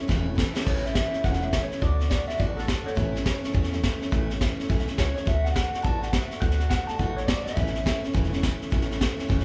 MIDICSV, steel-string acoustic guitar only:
0, 0, Header, 1, 2, 480
1, 0, Start_track
1, 0, Key_signature, 3, "major"
1, 0, Tempo, 287632
1, 1105, Time_signature, 4, 2, 24, 8
1, 15765, End_track
2, 0, Start_track
2, 0, Title_t, "Steel-string acoustic guitar"
2, 0, Program_c, 0, 25
2, 126, Note_on_c, 0, 45, 89
2, 133, Note_on_c, 0, 52, 107
2, 148, Note_on_c, 0, 57, 95
2, 157, Note_on_c, 0, 61, 106
2, 166, Note_on_c, 0, 64, 107
2, 408, Note_off_c, 0, 64, 0
2, 428, Note_on_c, 0, 64, 56
2, 437, Note_off_c, 0, 45, 0
2, 440, Note_off_c, 0, 52, 0
2, 440, Note_off_c, 0, 61, 0
2, 448, Note_off_c, 0, 57, 0
2, 460, Note_on_c, 0, 61, 59
2, 483, Note_on_c, 0, 57, 45
2, 589, Note_off_c, 0, 57, 0
2, 589, Note_on_c, 0, 52, 70
2, 609, Note_off_c, 0, 61, 0
2, 609, Note_on_c, 0, 57, 76
2, 615, Note_off_c, 0, 64, 0
2, 629, Note_on_c, 0, 61, 83
2, 640, Note_on_c, 0, 64, 84
2, 873, Note_off_c, 0, 64, 0
2, 893, Note_on_c, 0, 64, 66
2, 909, Note_off_c, 0, 52, 0
2, 912, Note_off_c, 0, 61, 0
2, 919, Note_off_c, 0, 57, 0
2, 932, Note_on_c, 0, 61, 60
2, 958, Note_on_c, 0, 57, 48
2, 1088, Note_off_c, 0, 64, 0
2, 1089, Note_on_c, 0, 45, 88
2, 1095, Note_off_c, 0, 57, 0
2, 1103, Note_off_c, 0, 61, 0
2, 1103, Note_on_c, 0, 52, 75
2, 1115, Note_on_c, 0, 57, 76
2, 1123, Note_on_c, 0, 61, 78
2, 1133, Note_on_c, 0, 64, 85
2, 1374, Note_off_c, 0, 64, 0
2, 1394, Note_on_c, 0, 64, 48
2, 1400, Note_off_c, 0, 45, 0
2, 1401, Note_off_c, 0, 61, 0
2, 1407, Note_off_c, 0, 52, 0
2, 1413, Note_off_c, 0, 57, 0
2, 1421, Note_on_c, 0, 61, 44
2, 1452, Note_on_c, 0, 57, 44
2, 1564, Note_on_c, 0, 52, 57
2, 1566, Note_off_c, 0, 57, 0
2, 1578, Note_off_c, 0, 61, 0
2, 1579, Note_off_c, 0, 64, 0
2, 1586, Note_on_c, 0, 57, 64
2, 1598, Note_on_c, 0, 61, 65
2, 1617, Note_on_c, 0, 64, 73
2, 1838, Note_off_c, 0, 64, 0
2, 1858, Note_on_c, 0, 64, 55
2, 1867, Note_off_c, 0, 61, 0
2, 1878, Note_off_c, 0, 52, 0
2, 1887, Note_on_c, 0, 61, 47
2, 1889, Note_off_c, 0, 57, 0
2, 1914, Note_on_c, 0, 57, 46
2, 2049, Note_off_c, 0, 57, 0
2, 2052, Note_off_c, 0, 64, 0
2, 2054, Note_off_c, 0, 61, 0
2, 2058, Note_on_c, 0, 45, 83
2, 2069, Note_on_c, 0, 57, 85
2, 2070, Note_on_c, 0, 52, 87
2, 2074, Note_on_c, 0, 61, 97
2, 2090, Note_on_c, 0, 64, 86
2, 2329, Note_off_c, 0, 64, 0
2, 2349, Note_on_c, 0, 64, 56
2, 2365, Note_off_c, 0, 45, 0
2, 2366, Note_off_c, 0, 61, 0
2, 2371, Note_off_c, 0, 52, 0
2, 2371, Note_off_c, 0, 57, 0
2, 2386, Note_on_c, 0, 61, 47
2, 2411, Note_on_c, 0, 57, 41
2, 2522, Note_off_c, 0, 57, 0
2, 2525, Note_on_c, 0, 52, 60
2, 2538, Note_off_c, 0, 64, 0
2, 2542, Note_on_c, 0, 57, 63
2, 2546, Note_off_c, 0, 61, 0
2, 2566, Note_on_c, 0, 61, 66
2, 2578, Note_on_c, 0, 64, 70
2, 2813, Note_off_c, 0, 64, 0
2, 2833, Note_on_c, 0, 64, 57
2, 2839, Note_off_c, 0, 61, 0
2, 2840, Note_off_c, 0, 52, 0
2, 2848, Note_off_c, 0, 57, 0
2, 2859, Note_on_c, 0, 61, 51
2, 2885, Note_on_c, 0, 57, 46
2, 2999, Note_on_c, 0, 50, 85
2, 3003, Note_off_c, 0, 57, 0
2, 3020, Note_off_c, 0, 64, 0
2, 3021, Note_off_c, 0, 61, 0
2, 3023, Note_on_c, 0, 57, 81
2, 3028, Note_on_c, 0, 62, 92
2, 3042, Note_on_c, 0, 66, 84
2, 3282, Note_off_c, 0, 66, 0
2, 3302, Note_on_c, 0, 66, 51
2, 3311, Note_off_c, 0, 62, 0
2, 3317, Note_off_c, 0, 50, 0
2, 3329, Note_off_c, 0, 57, 0
2, 3331, Note_on_c, 0, 62, 46
2, 3348, Note_on_c, 0, 57, 43
2, 3482, Note_on_c, 0, 50, 65
2, 3485, Note_off_c, 0, 57, 0
2, 3495, Note_off_c, 0, 66, 0
2, 3505, Note_off_c, 0, 62, 0
2, 3505, Note_on_c, 0, 57, 62
2, 3525, Note_on_c, 0, 62, 65
2, 3534, Note_on_c, 0, 66, 72
2, 3756, Note_off_c, 0, 66, 0
2, 3776, Note_on_c, 0, 66, 50
2, 3784, Note_off_c, 0, 62, 0
2, 3799, Note_off_c, 0, 50, 0
2, 3804, Note_on_c, 0, 62, 51
2, 3810, Note_off_c, 0, 57, 0
2, 3827, Note_on_c, 0, 57, 42
2, 3961, Note_on_c, 0, 50, 88
2, 3962, Note_off_c, 0, 57, 0
2, 3972, Note_off_c, 0, 66, 0
2, 3977, Note_off_c, 0, 62, 0
2, 3982, Note_on_c, 0, 57, 78
2, 3997, Note_on_c, 0, 62, 91
2, 4008, Note_on_c, 0, 66, 97
2, 4237, Note_off_c, 0, 66, 0
2, 4257, Note_on_c, 0, 66, 51
2, 4277, Note_off_c, 0, 62, 0
2, 4278, Note_off_c, 0, 50, 0
2, 4289, Note_off_c, 0, 57, 0
2, 4297, Note_on_c, 0, 62, 56
2, 4310, Note_on_c, 0, 57, 46
2, 4438, Note_on_c, 0, 50, 64
2, 4441, Note_off_c, 0, 57, 0
2, 4453, Note_off_c, 0, 66, 0
2, 4457, Note_off_c, 0, 62, 0
2, 4461, Note_on_c, 0, 57, 70
2, 4477, Note_on_c, 0, 62, 71
2, 4490, Note_on_c, 0, 66, 72
2, 4713, Note_off_c, 0, 66, 0
2, 4733, Note_on_c, 0, 66, 53
2, 4748, Note_off_c, 0, 62, 0
2, 4757, Note_off_c, 0, 50, 0
2, 4768, Note_off_c, 0, 57, 0
2, 4768, Note_on_c, 0, 62, 47
2, 4792, Note_on_c, 0, 57, 46
2, 4921, Note_on_c, 0, 45, 87
2, 4922, Note_off_c, 0, 57, 0
2, 4931, Note_off_c, 0, 66, 0
2, 4933, Note_on_c, 0, 52, 96
2, 4939, Note_off_c, 0, 62, 0
2, 4942, Note_on_c, 0, 57, 81
2, 4945, Note_on_c, 0, 61, 89
2, 4955, Note_on_c, 0, 64, 90
2, 5185, Note_off_c, 0, 64, 0
2, 5205, Note_on_c, 0, 64, 55
2, 5224, Note_off_c, 0, 61, 0
2, 5238, Note_off_c, 0, 45, 0
2, 5243, Note_off_c, 0, 57, 0
2, 5244, Note_off_c, 0, 52, 0
2, 5244, Note_on_c, 0, 61, 50
2, 5263, Note_on_c, 0, 57, 43
2, 5404, Note_off_c, 0, 57, 0
2, 5407, Note_off_c, 0, 64, 0
2, 5407, Note_on_c, 0, 52, 67
2, 5420, Note_off_c, 0, 61, 0
2, 5424, Note_on_c, 0, 57, 71
2, 5440, Note_on_c, 0, 61, 72
2, 5454, Note_on_c, 0, 64, 77
2, 5667, Note_off_c, 0, 64, 0
2, 5687, Note_on_c, 0, 64, 67
2, 5704, Note_off_c, 0, 61, 0
2, 5720, Note_off_c, 0, 57, 0
2, 5721, Note_off_c, 0, 52, 0
2, 5724, Note_on_c, 0, 61, 57
2, 5740, Note_on_c, 0, 57, 54
2, 5875, Note_on_c, 0, 45, 91
2, 5878, Note_off_c, 0, 57, 0
2, 5888, Note_off_c, 0, 64, 0
2, 5892, Note_off_c, 0, 61, 0
2, 5894, Note_on_c, 0, 52, 98
2, 5898, Note_on_c, 0, 57, 106
2, 5912, Note_on_c, 0, 61, 107
2, 5914, Note_on_c, 0, 64, 104
2, 6161, Note_off_c, 0, 64, 0
2, 6181, Note_on_c, 0, 64, 63
2, 6182, Note_off_c, 0, 61, 0
2, 6195, Note_off_c, 0, 45, 0
2, 6202, Note_on_c, 0, 61, 59
2, 6204, Note_off_c, 0, 52, 0
2, 6206, Note_off_c, 0, 57, 0
2, 6238, Note_on_c, 0, 57, 49
2, 6374, Note_off_c, 0, 64, 0
2, 6379, Note_on_c, 0, 52, 70
2, 6385, Note_off_c, 0, 61, 0
2, 6389, Note_off_c, 0, 57, 0
2, 6409, Note_on_c, 0, 57, 74
2, 6426, Note_on_c, 0, 61, 68
2, 6441, Note_on_c, 0, 64, 73
2, 6662, Note_off_c, 0, 64, 0
2, 6682, Note_on_c, 0, 64, 60
2, 6684, Note_off_c, 0, 61, 0
2, 6687, Note_off_c, 0, 52, 0
2, 6702, Note_off_c, 0, 57, 0
2, 6704, Note_on_c, 0, 61, 55
2, 6733, Note_on_c, 0, 57, 43
2, 6857, Note_on_c, 0, 45, 85
2, 6859, Note_off_c, 0, 57, 0
2, 6864, Note_off_c, 0, 61, 0
2, 6865, Note_off_c, 0, 64, 0
2, 6868, Note_on_c, 0, 52, 93
2, 6879, Note_on_c, 0, 57, 93
2, 6884, Note_on_c, 0, 61, 96
2, 6896, Note_on_c, 0, 64, 96
2, 7147, Note_off_c, 0, 64, 0
2, 7165, Note_off_c, 0, 45, 0
2, 7167, Note_on_c, 0, 64, 54
2, 7170, Note_off_c, 0, 52, 0
2, 7172, Note_off_c, 0, 61, 0
2, 7176, Note_off_c, 0, 57, 0
2, 7193, Note_on_c, 0, 61, 51
2, 7222, Note_on_c, 0, 57, 45
2, 7332, Note_off_c, 0, 57, 0
2, 7337, Note_on_c, 0, 52, 60
2, 7347, Note_off_c, 0, 64, 0
2, 7352, Note_on_c, 0, 57, 63
2, 7355, Note_off_c, 0, 61, 0
2, 7375, Note_on_c, 0, 61, 82
2, 7399, Note_on_c, 0, 64, 77
2, 7606, Note_off_c, 0, 64, 0
2, 7626, Note_on_c, 0, 64, 65
2, 7645, Note_off_c, 0, 52, 0
2, 7650, Note_off_c, 0, 61, 0
2, 7652, Note_off_c, 0, 57, 0
2, 7670, Note_on_c, 0, 61, 52
2, 7693, Note_on_c, 0, 57, 52
2, 7811, Note_off_c, 0, 57, 0
2, 7814, Note_on_c, 0, 45, 94
2, 7816, Note_off_c, 0, 64, 0
2, 7820, Note_on_c, 0, 52, 94
2, 7823, Note_off_c, 0, 61, 0
2, 7832, Note_on_c, 0, 57, 102
2, 7843, Note_on_c, 0, 61, 101
2, 7854, Note_on_c, 0, 64, 105
2, 8083, Note_off_c, 0, 64, 0
2, 8104, Note_on_c, 0, 64, 61
2, 8115, Note_off_c, 0, 61, 0
2, 8123, Note_off_c, 0, 45, 0
2, 8126, Note_off_c, 0, 52, 0
2, 8132, Note_off_c, 0, 57, 0
2, 8135, Note_on_c, 0, 61, 51
2, 8158, Note_on_c, 0, 57, 48
2, 8294, Note_off_c, 0, 64, 0
2, 8296, Note_on_c, 0, 52, 68
2, 8298, Note_off_c, 0, 57, 0
2, 8310, Note_off_c, 0, 61, 0
2, 8318, Note_on_c, 0, 57, 69
2, 8335, Note_on_c, 0, 61, 69
2, 8347, Note_on_c, 0, 64, 63
2, 8558, Note_off_c, 0, 64, 0
2, 8578, Note_on_c, 0, 64, 57
2, 8588, Note_off_c, 0, 61, 0
2, 8603, Note_off_c, 0, 52, 0
2, 8608, Note_on_c, 0, 61, 48
2, 8615, Note_off_c, 0, 57, 0
2, 8632, Note_on_c, 0, 57, 41
2, 8748, Note_off_c, 0, 57, 0
2, 8763, Note_on_c, 0, 50, 84
2, 8768, Note_on_c, 0, 57, 89
2, 8771, Note_off_c, 0, 64, 0
2, 8784, Note_off_c, 0, 61, 0
2, 8790, Note_on_c, 0, 66, 93
2, 8791, Note_on_c, 0, 62, 84
2, 9040, Note_off_c, 0, 66, 0
2, 9060, Note_on_c, 0, 66, 51
2, 9071, Note_off_c, 0, 62, 0
2, 9077, Note_off_c, 0, 50, 0
2, 9079, Note_off_c, 0, 57, 0
2, 9091, Note_on_c, 0, 62, 47
2, 9116, Note_on_c, 0, 57, 39
2, 9238, Note_off_c, 0, 57, 0
2, 9240, Note_on_c, 0, 50, 66
2, 9252, Note_off_c, 0, 66, 0
2, 9258, Note_on_c, 0, 57, 63
2, 9259, Note_off_c, 0, 62, 0
2, 9279, Note_on_c, 0, 62, 64
2, 9292, Note_on_c, 0, 66, 63
2, 9534, Note_off_c, 0, 66, 0
2, 9554, Note_on_c, 0, 66, 51
2, 9555, Note_off_c, 0, 50, 0
2, 9564, Note_off_c, 0, 57, 0
2, 9565, Note_off_c, 0, 62, 0
2, 9585, Note_on_c, 0, 62, 47
2, 9609, Note_on_c, 0, 57, 46
2, 9715, Note_off_c, 0, 57, 0
2, 9715, Note_on_c, 0, 50, 84
2, 9724, Note_off_c, 0, 62, 0
2, 9730, Note_off_c, 0, 66, 0
2, 9735, Note_on_c, 0, 57, 91
2, 9744, Note_on_c, 0, 62, 97
2, 9750, Note_on_c, 0, 66, 95
2, 9998, Note_off_c, 0, 66, 0
2, 10018, Note_on_c, 0, 66, 47
2, 10031, Note_off_c, 0, 62, 0
2, 10032, Note_off_c, 0, 50, 0
2, 10042, Note_off_c, 0, 57, 0
2, 10051, Note_on_c, 0, 62, 45
2, 10076, Note_on_c, 0, 57, 43
2, 10210, Note_off_c, 0, 66, 0
2, 10214, Note_off_c, 0, 57, 0
2, 10217, Note_on_c, 0, 50, 60
2, 10227, Note_off_c, 0, 62, 0
2, 10234, Note_on_c, 0, 57, 65
2, 10260, Note_on_c, 0, 62, 67
2, 10271, Note_on_c, 0, 66, 70
2, 10492, Note_off_c, 0, 66, 0
2, 10512, Note_on_c, 0, 66, 51
2, 10523, Note_off_c, 0, 50, 0
2, 10527, Note_off_c, 0, 62, 0
2, 10531, Note_off_c, 0, 57, 0
2, 10547, Note_on_c, 0, 62, 44
2, 10574, Note_on_c, 0, 57, 41
2, 10679, Note_off_c, 0, 57, 0
2, 10681, Note_on_c, 0, 50, 80
2, 10690, Note_off_c, 0, 62, 0
2, 10697, Note_off_c, 0, 66, 0
2, 10700, Note_on_c, 0, 57, 88
2, 10710, Note_on_c, 0, 62, 75
2, 10717, Note_on_c, 0, 66, 88
2, 10969, Note_off_c, 0, 66, 0
2, 10989, Note_on_c, 0, 66, 55
2, 10994, Note_off_c, 0, 50, 0
2, 10997, Note_off_c, 0, 62, 0
2, 11004, Note_off_c, 0, 57, 0
2, 11017, Note_on_c, 0, 62, 52
2, 11042, Note_on_c, 0, 57, 44
2, 11167, Note_on_c, 0, 50, 60
2, 11169, Note_off_c, 0, 57, 0
2, 11175, Note_off_c, 0, 66, 0
2, 11189, Note_off_c, 0, 62, 0
2, 11189, Note_on_c, 0, 57, 56
2, 11214, Note_on_c, 0, 62, 67
2, 11227, Note_on_c, 0, 66, 71
2, 11456, Note_off_c, 0, 66, 0
2, 11476, Note_on_c, 0, 66, 51
2, 11477, Note_off_c, 0, 50, 0
2, 11481, Note_off_c, 0, 62, 0
2, 11488, Note_off_c, 0, 57, 0
2, 11501, Note_on_c, 0, 62, 55
2, 11530, Note_on_c, 0, 57, 48
2, 11647, Note_off_c, 0, 57, 0
2, 11650, Note_on_c, 0, 50, 82
2, 11657, Note_off_c, 0, 62, 0
2, 11658, Note_off_c, 0, 66, 0
2, 11667, Note_on_c, 0, 57, 92
2, 11677, Note_on_c, 0, 62, 90
2, 11691, Note_on_c, 0, 66, 86
2, 11936, Note_off_c, 0, 66, 0
2, 11956, Note_on_c, 0, 66, 52
2, 11958, Note_off_c, 0, 50, 0
2, 11967, Note_off_c, 0, 57, 0
2, 11972, Note_off_c, 0, 62, 0
2, 11989, Note_on_c, 0, 62, 50
2, 12012, Note_on_c, 0, 57, 43
2, 12136, Note_on_c, 0, 50, 61
2, 12138, Note_off_c, 0, 66, 0
2, 12144, Note_off_c, 0, 57, 0
2, 12155, Note_off_c, 0, 62, 0
2, 12164, Note_on_c, 0, 57, 64
2, 12181, Note_on_c, 0, 62, 69
2, 12199, Note_on_c, 0, 66, 74
2, 12425, Note_off_c, 0, 66, 0
2, 12441, Note_off_c, 0, 50, 0
2, 12445, Note_on_c, 0, 66, 60
2, 12451, Note_off_c, 0, 62, 0
2, 12455, Note_off_c, 0, 57, 0
2, 12471, Note_on_c, 0, 62, 48
2, 12506, Note_on_c, 0, 57, 43
2, 12608, Note_on_c, 0, 45, 88
2, 12610, Note_off_c, 0, 57, 0
2, 12622, Note_off_c, 0, 66, 0
2, 12625, Note_on_c, 0, 52, 83
2, 12630, Note_on_c, 0, 57, 83
2, 12632, Note_off_c, 0, 62, 0
2, 12638, Note_on_c, 0, 61, 92
2, 12651, Note_on_c, 0, 64, 91
2, 12891, Note_off_c, 0, 64, 0
2, 12911, Note_on_c, 0, 64, 54
2, 12917, Note_off_c, 0, 45, 0
2, 12920, Note_off_c, 0, 61, 0
2, 12926, Note_off_c, 0, 52, 0
2, 12928, Note_off_c, 0, 57, 0
2, 12940, Note_on_c, 0, 61, 47
2, 12972, Note_on_c, 0, 57, 45
2, 13077, Note_on_c, 0, 52, 67
2, 13081, Note_off_c, 0, 57, 0
2, 13096, Note_off_c, 0, 64, 0
2, 13101, Note_on_c, 0, 57, 68
2, 13103, Note_off_c, 0, 61, 0
2, 13123, Note_on_c, 0, 61, 67
2, 13140, Note_on_c, 0, 64, 83
2, 13366, Note_off_c, 0, 64, 0
2, 13386, Note_on_c, 0, 64, 64
2, 13391, Note_off_c, 0, 52, 0
2, 13399, Note_off_c, 0, 61, 0
2, 13404, Note_off_c, 0, 57, 0
2, 13419, Note_on_c, 0, 61, 62
2, 13435, Note_on_c, 0, 57, 52
2, 13570, Note_off_c, 0, 57, 0
2, 13570, Note_on_c, 0, 45, 97
2, 13572, Note_off_c, 0, 61, 0
2, 13573, Note_off_c, 0, 64, 0
2, 13575, Note_on_c, 0, 52, 104
2, 13590, Note_on_c, 0, 57, 101
2, 13592, Note_on_c, 0, 61, 97
2, 13603, Note_on_c, 0, 64, 100
2, 13843, Note_off_c, 0, 64, 0
2, 13863, Note_on_c, 0, 64, 60
2, 13871, Note_off_c, 0, 61, 0
2, 13878, Note_off_c, 0, 45, 0
2, 13881, Note_off_c, 0, 52, 0
2, 13888, Note_off_c, 0, 57, 0
2, 13891, Note_on_c, 0, 61, 59
2, 13912, Note_on_c, 0, 57, 51
2, 14040, Note_on_c, 0, 52, 69
2, 14043, Note_off_c, 0, 57, 0
2, 14051, Note_off_c, 0, 64, 0
2, 14063, Note_on_c, 0, 57, 73
2, 14066, Note_off_c, 0, 61, 0
2, 14082, Note_on_c, 0, 61, 77
2, 14097, Note_on_c, 0, 64, 86
2, 14309, Note_off_c, 0, 64, 0
2, 14329, Note_on_c, 0, 64, 54
2, 14348, Note_off_c, 0, 61, 0
2, 14353, Note_off_c, 0, 52, 0
2, 14365, Note_off_c, 0, 57, 0
2, 14368, Note_on_c, 0, 61, 53
2, 14389, Note_on_c, 0, 57, 47
2, 14520, Note_on_c, 0, 45, 95
2, 14525, Note_off_c, 0, 64, 0
2, 14526, Note_off_c, 0, 57, 0
2, 14535, Note_on_c, 0, 52, 85
2, 14538, Note_off_c, 0, 61, 0
2, 14546, Note_on_c, 0, 57, 86
2, 14558, Note_on_c, 0, 61, 94
2, 14561, Note_on_c, 0, 64, 111
2, 14807, Note_off_c, 0, 64, 0
2, 14827, Note_on_c, 0, 64, 59
2, 14833, Note_off_c, 0, 45, 0
2, 14835, Note_off_c, 0, 61, 0
2, 14840, Note_off_c, 0, 52, 0
2, 14846, Note_off_c, 0, 57, 0
2, 14855, Note_on_c, 0, 61, 50
2, 14886, Note_on_c, 0, 57, 49
2, 14990, Note_on_c, 0, 52, 68
2, 14991, Note_off_c, 0, 57, 0
2, 15005, Note_off_c, 0, 61, 0
2, 15011, Note_on_c, 0, 57, 70
2, 15013, Note_off_c, 0, 64, 0
2, 15025, Note_on_c, 0, 61, 78
2, 15045, Note_on_c, 0, 64, 67
2, 15280, Note_off_c, 0, 64, 0
2, 15300, Note_on_c, 0, 64, 62
2, 15308, Note_off_c, 0, 52, 0
2, 15313, Note_off_c, 0, 61, 0
2, 15318, Note_off_c, 0, 57, 0
2, 15333, Note_on_c, 0, 61, 58
2, 15355, Note_on_c, 0, 57, 51
2, 15473, Note_on_c, 0, 45, 98
2, 15476, Note_off_c, 0, 57, 0
2, 15481, Note_off_c, 0, 61, 0
2, 15489, Note_off_c, 0, 64, 0
2, 15494, Note_on_c, 0, 52, 99
2, 15496, Note_on_c, 0, 57, 104
2, 15501, Note_on_c, 0, 61, 105
2, 15519, Note_on_c, 0, 64, 103
2, 15760, Note_off_c, 0, 64, 0
2, 15765, Note_off_c, 0, 45, 0
2, 15765, Note_off_c, 0, 52, 0
2, 15765, Note_off_c, 0, 57, 0
2, 15765, Note_off_c, 0, 61, 0
2, 15765, End_track
0, 0, End_of_file